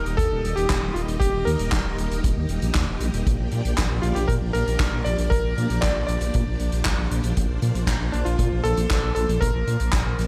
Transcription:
Already playing: string machine G3 A#3 D#4 G4 D#5, electric grand piano A#4
0.06 detuned saw bass D#1, closed hi-hat
0.17 detuned saw bass D#2, electric grand piano A4, kick, closed hi-hat
0.31 detuned saw bass D#1
0.44 detuned saw bass D#1, closed hi-hat
0.56 detuned saw bass D#1, electric grand piano G4, closed hi-hat
0.69 detuned saw bass D#1, kick, snare, clap, closed hi-hat
0.83 detuned saw bass D#1
0.94 detuned saw bass D#1, electric grand piano F4, closed hi-hat
1.08 detuned saw bass D#1, closed hi-hat
1.20 detuned saw bass D#1, electric grand piano G4, kick, closed hi-hat
1.34 detuned saw bass D#1
1.45 detuned saw bass D#2, electric grand piano A#4, closed hi-hat
1.59 detuned saw bass D#1, closed hi-hat
1.72 detuned saw bass D#1, kick, snare, clap, closed hi-hat
1.85 detuned saw bass D#1
1.98 detuned saw bass D#1, closed hi-hat
2.11 detuned saw bass D#1, closed hi-hat
2.24 detuned saw bass D#1, kick, closed hi-hat
2.37 detuned saw bass D#2
2.49 detuned saw bass D#1, closed hi-hat
2.62 detuned saw bass A#1, closed hi-hat
2.75 detuned saw bass D#2, kick, snare, clap, closed hi-hat
2.88 detuned saw bass D#1
3.00 detuned saw bass A#1, closed hi-hat
3.14 detuned saw bass D#1, closed hi-hat
3.26 detuned saw bass A#1, string machine F3 D4 D5, kick, closed hi-hat
3.39 detuned saw bass A#1
3.51 detuned saw bass A#2, closed hi-hat
3.65 detuned saw bass A#1, closed hi-hat
3.77 detuned saw bass A#1, kick, snare, clap, closed hi-hat
3.91 detuned saw bass A#1
4.02 detuned saw bass A#1, electric grand piano F4, closed hi-hat
4.15 detuned saw bass A#1, electric grand piano G4, closed hi-hat
4.28 detuned saw bass A#2, electric grand piano A#4, kick, closed hi-hat
4.42 detuned saw bass A#1
4.53 detuned saw bass A#1, electric grand piano A#4, closed hi-hat
4.67 detuned saw bass A#1, closed hi-hat
4.80 detuned saw bass A#1, kick, snare, clap, closed hi-hat
4.93 detuned saw bass A#1
5.04 detuned saw bass A#1, electric grand piano D5, closed hi-hat
5.18 detuned saw bass A#1, closed hi-hat
5.30 detuned saw bass A#1, electric grand piano A#4, kick, closed hi-hat
5.44 detuned saw bass A#1
5.57 detuned saw bass A#2, closed hi-hat
5.70 detuned saw bass A#1, closed hi-hat
5.81 detuned saw bass A#1, electric grand piano D5, kick, snare, clap, closed hi-hat
5.96 detuned saw bass A#1
6.07 detuned saw bass A#1, electric grand piano D5, closed hi-hat
6.21 detuned saw bass A#1, closed hi-hat
6.34 detuned saw bass A#2, kick, closed hi-hat
6.47 detuned saw bass A#1
6.59 detuned saw bass A#1, closed hi-hat
6.72 detuned saw bass A#1, closed hi-hat
6.85 detuned saw bass A#1, kick, snare, clap, closed hi-hat
6.98 detuned saw bass A#1
7.11 detuned saw bass A#1, closed hi-hat
7.23 detuned saw bass A#1, closed hi-hat
7.36 detuned saw bass A#1, string machine C5, kick, closed hi-hat
7.49 detuned saw bass A#1
7.62 detuned saw bass A#2, closed hi-hat
7.75 detuned saw bass A#1, closed hi-hat
7.87 detuned saw bass A#1, kick, snare, clap, closed hi-hat
8.01 detuned saw bass A#1
8.12 detuned saw bass A#1, electric grand piano D4, closed hi-hat
8.25 detuned saw bass A#1, electric grand piano F4, closed hi-hat
8.39 detuned saw bass A#2, kick, closed hi-hat
8.52 detuned saw bass A#1
8.64 detuned saw bass A#1, electric grand piano A4, closed hi-hat
8.77 detuned saw bass A#1, closed hi-hat
8.90 detuned saw bass A#1, kick, snare, clap, closed hi-hat
9.03 detuned saw bass A#1
9.15 detuned saw bass A#1, electric grand piano A4, closed hi-hat
9.29 detuned saw bass A#1, closed hi-hat
9.41 detuned saw bass A#1, electric grand piano A#4, kick, closed hi-hat
9.54 detuned saw bass A#1
9.67 detuned saw bass A#2, closed hi-hat
9.80 detuned saw bass A#1, closed hi-hat
9.93 detuned saw bass A#1, kick, snare, clap, closed hi-hat
10.06 detuned saw bass A#1
10.19 detuned saw bass A#1, snare, closed hi-hat

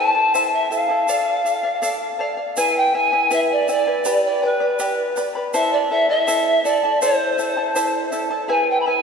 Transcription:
Already playing: charango E4 A4 E5 A5, pan flute A5
0.15 charango E4 A4 A5
0.34 charango E4 A4 C5 E5 A5, shaker
0.54 pan flute E5
0.70 charango E4 A4 E5 A5, pan flute F5, shaker
0.89 charango E4 A4 A5
1.08 charango A4 D5 F5, shaker
1.45 charango A4 D5 F5, shaker
1.63 charango D5 F5
1.82 charango A4 D5 F5, shaker
2.19 charango A4 D5 F5
2.37 charango D5 F5
2.57 charango E4 G#4 B4 E5 G#5, pan flute G#5, shaker
2.77 pan flute G5
2.94 charango E4 B4 E5 G#5, pan flute G#5
3.12 charango E4 B4 G#5
3.30 charango E4 G#4 B4 E5 G#5, pan flute E5, shaker
3.52 pan flute D5
3.68 charango E4 B4 E5 G#5, pan flute D5, shaker
3.87 charango E4 B4 G#5
4.05 charango G4 B4 D5 G5 B5, shaker
4.26 pan flute D5
4.42 charango B4 D5 G5 B5, pan flute B4
4.60 charango B4 D5 B5
4.79 charango G4 B4 D5 G5 B5, shaker
5.16 charango B4 D5 G5 B5, shaker
5.35 charango B4 D5 B5
5.54 charango E4 A4 C5 E5 A5, pan flute E5, shaker
5.73 pan flute D5
5.90 charango E4 A4 E5 A5, pan flute E5
6.09 charango E4 A4 A5, pan flute E5
6.27 charango E4 A4 C5 E5 A5, shaker
6.64 charango E4 A4 E5 A5, pan flute D5, shaker
6.83 charango E4 A4 A5
7.02 charango E4 A4 C5 E5 A5, pan flute C5, shaker
7.38 charango E4 A4 E5 A5, shaker
7.57 charango E4 A4 A5
7.75 charango E4 A4 C5 E5 A5, shaker
8.12 charango E4 A4 E5 A5, shaker
8.30 charango E4 A4 A5
8.48 charango E4 G#4 B4 E5 G#5, pan flute G#5
8.70 pan flute G5
8.80 pan flute B5
8.86 charango E4 B4 E5 G#5, pan flute G#5

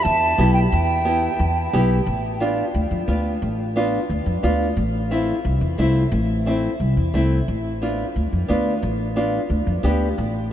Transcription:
0.03 upright bass E2, flute A5
0.38 upright bass B1, nylon-string guitar B3 E4 G4
0.54 flute G5
0.71 upright bass E2, flute G5
1.05 nylon-string guitar B3 E4 G4
1.39 upright bass E2
1.73 upright bass B1, nylon-string guitar B3 E4 G4
2.06 upright bass A1
2.40 nylon-string guitar B3 D4 F4
2.74 upright bass D2
2.91 upright bass F2
3.08 upright bass D2, nylon-string guitar B3 D4 F4
3.42 upright bass A1
3.76 nylon-string guitar B3 D4 F4
4.10 upright bass D2
4.26 upright bass F2
4.43 upright bass D2, nylon-string guitar B3 D4 F4
4.77 upright bass A1
5.11 nylon-string guitar A3 C4 E4
5.45 upright bass C2
5.61 upright bass E2
5.78 upright bass C2, nylon-string guitar A3 C4 E4
6.12 upright bass A1
6.46 nylon-string guitar A3 C4 E4
6.80 upright bass C2
6.97 upright bass E2
7.14 upright bass C2, nylon-string guitar A3 C4 E4
7.48 upright bass A1
7.82 nylon-string guitar B3 D4 F4
8.16 upright bass D2
8.32 upright bass F2
8.48 upright bass D2, nylon-string guitar B3 D4 F4
8.83 upright bass A1
9.16 nylon-string guitar B3 D4 F4
9.50 upright bass D2
9.67 upright bass F2
9.83 upright bass D2, nylon-string guitar B3 D4 G4
10.18 upright bass A1

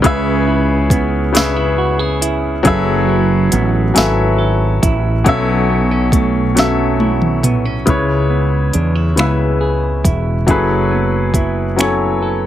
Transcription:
Already playing: clean electric guitar E3 A3 D4 F#4
0.02 fretless electric bass C#2, grand piano C#3 C#4 G#4 B4, clean electric guitar C#3, kick, closed hi-hat
0.06 grand piano E5
0.47 clean electric guitar E4
0.90 clean electric guitar B3, kick, closed hi-hat
1.32 grand piano C#3 C#4 G#4 B4, clean electric guitar D4, closed hi-hat
1.37 grand piano E5, snare
1.56 clean electric guitar E4
1.78 clean electric guitar F#4
1.99 clean electric guitar G#4
2.21 clean electric guitar E4, closed hi-hat
2.63 fretless electric bass F#1, grand piano F#3 C#4 G#4 A4 B4, clean electric guitar F#3, kick, closed hi-hat
2.67 grand piano E5
3.08 clean electric guitar E4
3.52 fretless electric bass A1, clean electric guitar B3, closed hi-hat
3.94 fretless electric bass G#1, grand piano F#3 C#4 A4 B4 G#5, clean electric guitar E4, snare, closed hi-hat
3.98 grand piano E5
4.38 clean electric guitar A4
4.82 fretless electric bass A1, clean electric guitar E4, kick, closed hi-hat
5.24 fretless electric bass B1, grand piano B2 F#3 C#4 A4, clean electric guitar B2, kick, closed hi-hat
5.29 grand piano E5
5.69 clean electric guitar B3
5.91 clean electric guitar C#4
6.12 clean electric guitar A3, kick, closed hi-hat
6.55 grand piano B2 F#3 C#4 A4, clean electric guitar C#4, snare, closed hi-hat
6.59 grand piano E5
7.00 clean electric guitar E4, high tom
7.22 mid tom
7.43 clean electric guitar B3, closed hi-hat, mid tom
7.65 clean electric guitar C#4
7.86 fretless electric bass C#2, grand piano C#3 G#3 E4 B4, clean electric guitar C#3, kick, closed hi-hat
7.90 grand piano C#5
8.30 clean electric guitar B3
8.73 fretless electric bass E2, clean electric guitar D4, closed hi-hat
8.95 clean electric guitar E4
9.16 fretless electric bass C#2, grand piano C#3 G#3 E4 B4, clean electric guitar B3, finger snap, closed hi-hat
9.20 grand piano E5
9.61 clean electric guitar G#4
10.04 fretless electric bass E1, clean electric guitar E4, kick, closed hi-hat
10.47 fretless electric bass F#1, grand piano F#3 C#4 E4 G#4 A4, clean electric guitar F#3, kick, closed hi-hat
10.51 grand piano B4
10.91 clean electric guitar B3
11.34 clean electric guitar E4, kick, closed hi-hat
11.76 grand piano F#3 C#4 E4 A4 G#5, clean electric guitar B3, closed hi-hat
11.81 grand piano C#5, finger snap
12.22 clean electric guitar A4

